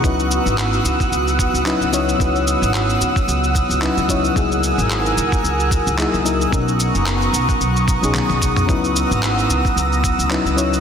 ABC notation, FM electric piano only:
X:1
M:4/4
L:1/16
Q:"Swing 16ths" 1/4=111
K:C#dor
V:1 name="FM electric piano"
[F,CDEB]12 [F,CDEB]2 [F,CDEc]2 | [F,CDEB]12 [F,CDEB]2 [F,CDEc]2 | [F,A,DEG]12 [F,A,DEG]2 [F,A,DEA]2 | [F,B,CDA]8- [F,B,CDA]3 [F,B,CDG]4- [F,B,CDG] |
[F,CDEB]12 [F,CDEB]2 [F,CDEc]2 |]